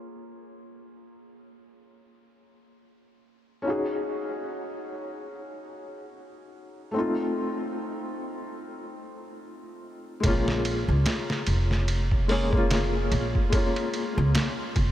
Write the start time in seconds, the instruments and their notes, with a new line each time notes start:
Already playing: felt piano A#3 C#4 F4 G#4
3.62 felt piano C#4 D#4
3.67 felt piano F#4 G#4
6.91 felt piano A3 C4
6.96 felt piano D#4 F4
10.20 upright bass A#1, felt piano G#3 A#3, kick, ride
10.25 felt piano C#4 F4
10.48 snare
10.65 ride
10.88 upright bass C#2
11.06 snare, ride
11.30 snare
11.47 upright bass F1, ride
11.71 snare
11.88 ride
12.11 kick
12.28 felt piano G#3 A#3 C#4 G#4, open hi-hat
12.50 felt piano G#3 A#3, kick
12.55 felt piano C#4 F4
12.71 snare, ride
13.12 upright bass A#1, ride
13.35 kick
13.50 felt piano G#3 A#3, kick, ride
13.54 felt piano C#4 F4
13.76 ride
13.94 ride
14.18 upright bass C#2
14.35 snare, ride
14.76 upright bass F1, kick, ride